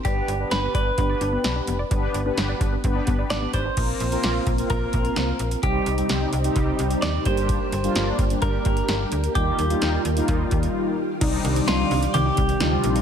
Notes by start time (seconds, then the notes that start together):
0.05 G1 B3 D4 G4 B4 D5, kick, closed hi-hat
0.28 G1, closed hi-hat
0.40 B3 D4 G4 B4
0.51 G1 D4 B4, snare, closed hi-hat
0.63 B3
0.74 G1 B4 D5, kick, closed hi-hat
0.98 G1 B3 D4 G4 B4, kick, closed hi-hat
1.10 D5
1.21 G1 D4, closed hi-hat
1.33 B3
1.44 B1 D5, snare, closed hi-hat
1.56 D4
1.67 F1 B3, closed hi-hat
1.79 D5
1.91 G1 B3 D4 G4 B4, kick, closed hi-hat
2.14 G1 D5, closed hi-hat
2.26 B3 D4 G4 B4
2.37 G1, snare, closed hi-hat
2.49 D5
2.61 G1 D4, kick, closed hi-hat
2.73 B3
2.84 G1 B3 D4 G4 B4, kick, closed hi-hat
2.96 D4
3.07 G1 B3, kick, closed hi-hat
3.19 D5
3.30 G#1 D4 D5, snare, closed hi-hat
3.42 B3
3.53 G#1 C5 D5, kick, closed hi-hat
3.66 D4
3.77 A#1 A#3 C4 F4 A#4, kick, closed hi-hat, crash
4.00 A#1, closed hi-hat
4.12 A#3 C4 F4 A#4, closed hi-hat
4.23 A#1, snare, closed hi-hat
4.46 A#1, kick, closed hi-hat
4.58 A#3 C4 F4 A#4, closed hi-hat
4.70 A#1 A#4, kick, closed hi-hat
4.93 A#1, kick, closed hi-hat
5.05 closed hi-hat
5.16 C2, snare, closed hi-hat
5.39 A#1, closed hi-hat
5.51 closed hi-hat
5.63 C2 C3 G3 C4 D#4 G4, kick, closed hi-hat
5.86 C2, closed hi-hat
5.98 G3 C4 D#4 G4, closed hi-hat
6.09 C2, snare, closed hi-hat
6.33 C2, closed hi-hat
6.44 G3 C4 D#4 G4, closed hi-hat
6.56 C2, kick, closed hi-hat
6.79 C2, closed hi-hat
6.91 closed hi-hat
7.02 D#2 D5, snare, closed hi-hat
7.25 G1 G3 A#3 D4 G4 C5, kick, closed hi-hat
7.37 closed hi-hat
7.49 kick, closed hi-hat
7.72 G1, closed hi-hat
7.84 G3 A#3 D4 F4, closed hi-hat
7.96 G1, snare, closed hi-hat
8.19 G1, kick, closed hi-hat
8.30 G3 A#3 D4 G4, closed hi-hat
8.42 G1 A#4, kick, closed hi-hat
8.65 G1, kick, closed hi-hat
8.77 closed hi-hat
8.88 G1, snare, closed hi-hat
9.12 D2, closed hi-hat
9.24 closed hi-hat
9.35 D#2 D#3 G3 A#3 D#4 F4 G4, kick, closed hi-hat
9.59 D#2, closed hi-hat
9.70 G3 A#3 D#4 F4, closed hi-hat
9.82 D#2, snare, closed hi-hat
10.05 D#2, closed hi-hat
10.17 G3 A#3 D#4 F4, closed hi-hat
10.28 D#2, kick, closed hi-hat
10.51 D#2, kick, closed hi-hat
10.63 closed hi-hat
11.21 C2 C3 D#3 G3 C4 D4 D#4 D5, kick, closed hi-hat, crash
11.33 G3
11.44 C2 D#3, closed hi-hat
11.56 D#4, closed hi-hat
11.68 C2 G3 F4, snare, closed hi-hat
11.79 D#3
11.91 C2, open hi-hat
12.03 G3, closed hi-hat
12.14 C2 D#3 G4, closed hi-hat
12.26 D#4
12.37 C2 G3, kick, closed hi-hat
12.49 D#3, closed hi-hat
12.60 D2 G3 C4 D4 D#4 F4, snare, closed hi-hat
12.72 G3
12.84 A#1 D#3, closed hi-hat
12.96 D#4, closed hi-hat